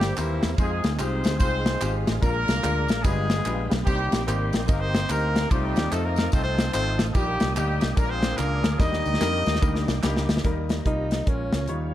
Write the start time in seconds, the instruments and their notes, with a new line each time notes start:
Already playing: fingered electric bass G1, horn section G3 A#3 C4 G4, tonewheel organ G4 C5 E5 A#5
0.01 snare, ride, tambourine
0.16 fingered electric bass D#2, horn section E3 G3 A#3 E4, grand piano A#3 C4 E4 G4 C5, clap, ride, tambourine
0.43 fingered electric bass E2, snare, ride, tambourine
0.57 fingered electric bass F2, horn section G#3 C4 D#4 G#4, grand piano G#3 C4 D#4 F4 C5, tonewheel organ G#4 D#5 F5 C6, kick, ride, tambourine
0.84 fingered electric bass D2, snare, ride, tambourine
0.98 fingered electric bass C2, grand piano G#3 C4 D#4 F4 G4, horn section C4 D#4 G#4 C5, clap, ride, tambourine
1.24 fingered electric bass D2, snare, ride, tambourine
1.39 grand piano G#3 C4 D#4 F4 C5, horn section C4 D#4 G#4 C5, kick, ride, tambourine
1.66 snare, ride, tambourine
1.81 fingered electric bass G#1, grand piano G#3 C4 D#4 F4 G4, clap, ride, tambourine
2.07 fingered electric bass A1, snare, ride, tambourine
2.21 fingered electric bass A#1, grand piano A#2 G#3 A#3 D4 F4 A#4, horn section A#3 D4 F4 A#4, tonewheel organ D5 A#5, kick, ride, tambourine
2.48 fingered electric bass C2, snare, ride, tambourine
2.63 fingered electric bass D2, grand piano G#3 A#3 D4 F4 A#4, clap, ride, tambourine
2.88 fingered electric bass A#1, snare, ride, tambourine
3.03 fingered electric bass G1, grand piano G2 G#3 D4 F4 G4 B4, horn section G#3 B3 F4 G#4, tonewheel organ G5 B5, kick, ride, tambourine
3.30 snare, ride, tambourine
3.45 fingered electric bass A#1, grand piano G#3 D4 F4 G4 B4, clap, ride, tambourine
3.71 fingered electric bass B1, snare, ride, tambourine
3.85 fingered electric bass C2, grand piano C3 A#3 C4 D#4 G4 C5, horn section G3 A#3 D#4 G4, tonewheel organ A#4 D#5 C6, kick, ride, tambourine
4.12 fingered electric bass A#1, snare, ride, tambourine
4.26 fingered electric bass G#1, horn section G3 A#3 D#4 G4, grand piano A#3 C4 D#4 G4 C5, clap, ride, tambourine
4.53 fingered electric bass A#1, snare, ride, tambourine
4.67 fingered electric bass G1, horn section A#3 D#4 G4 A#4, grand piano A#3 C4 D#4 G4 D#5, kick, ride, tambourine
4.80 horn section C4 D#4 G4 C5
4.95 snare, ride, tambourine
5.09 fingered electric bass D2, horn section A#3 D#4 G4 A#4, grand piano A#3 C4 D#4 G4 C5, clap, ride, tambourine
5.36 snare, ride, tambourine
5.49 fingered electric bass C2, grand piano C3 A3 C4 D#4 F4 C5, horn section G3 D#4 G4, tonewheel organ C5 F5 A5 D#6, kick, ride, tambourine
5.76 fingered electric bass D#2, snare, ride, tambourine
5.91 fingered electric bass F2, horn section A3 A4, grand piano A3 C4 D#4 F4 D#5, clap, ride, tambourine
6.03 horn section A#3 D#4 F4 A#4
6.16 snare, ride, tambourine
6.31 fingered electric bass C2, grand piano A3 C4 D#4 F4 D#5, horn section C4 D#4 A4 C5, kick, ride, tambourine
6.43 horn section C4 D#4 A4 C5
6.59 snare, ride, tambourine
6.72 fingered electric bass G#1, grand piano A3 C4 D#4 F4 C5, horn section C4 D#4 A4 C5, clap, ride, tambourine
6.99 fingered electric bass A1, snare, ride, tambourine
7.14 fingered electric bass A#1, grand piano A#2 A#3 D#4 G4, horn section G3 A#3 D#4 G4, tonewheel organ A#4 D#5 G5, kick, ride, tambourine
7.40 fingered electric bass C2, snare, ride, tambourine
7.55 fingered electric bass D2, horn section G3 A#3 D#4 G4, grand piano A#3 D#4 G4, clap, ride, tambourine
7.81 fingered electric bass C2, snare, ride, tambourine
7.96 fingered electric bass A#1, grand piano A#2 G#3 A#3 D4 F4 A#4, horn section A#3 D4 F4 A#4, tonewheel organ F5 G#5 D6, kick, ride, tambourine
8.09 horn section C4 F4 G#4 C5
8.23 snare, ride, tambourine
8.37 fingered electric bass C#2, grand piano G#3 A#3 D4 F4 A#4, horn section A#3 D4 F4 A#4, clap, ride, tambourine
8.64 fingered electric bass D2, snare, ride, tambourine
8.79 fingered electric bass D#2, grand piano D#3 G3 A#3 D4 D#4 A#4, horn section D#4 G4 A#4 D#5, tonewheel organ D#5 G5 D6, kick, snare, tambourine
8.93 snare
9.06 fingered electric bass D2, tambourine
9.14 snare
9.20 fingered electric bass F2, grand piano G3 A#3 D4 D#4 A#4, snare, clap, tambourine
9.46 fingered electric bass D#2, snare, tambourine
9.55 snare
9.62 fingered electric bass D2, grand piano G3 A#3 D4 D#4 A#4, kick, tambourine
9.75 snare
9.88 fingered electric bass C2, snare, tambourine
10.03 fingered electric bass C#2, grand piano G3 A#3 D4 D#4 G4, snare, clap, tambourine
10.16 snare
10.29 fingered electric bass D2, snare, tambourine
10.37 snare
10.43 fingered electric bass D#2, grand piano D#3 G3 A#3 D#4 A#4, french horn section G3 A#3 D#4 G4, tonewheel organ G4 A#4 D#5 A#5, kick, closed hi-hat
10.69 snare, closed hi-hat
10.85 fingered electric bass C2, grand piano G3 A#3 D#4 F4, alto saxophone D#4, kick, closed hi-hat
11.11 snare, closed hi-hat
11.26 fingered electric bass A#1, grand piano A#2 G#3 C#4 F4 A#4, french horn section G#3 A#3 C#4 F4, alto saxophone C#4, tonewheel organ F4 C#5 G#5, kick, closed hi-hat
11.53 fingered electric bass C#2, snare, closed hi-hat
11.68 fingered electric bass D#2, grand piano D#3 G3 D#4 F4 C#5, french horn section F3 G3 D#4, tonewheel organ D#4 G4 F5, closed hi-hat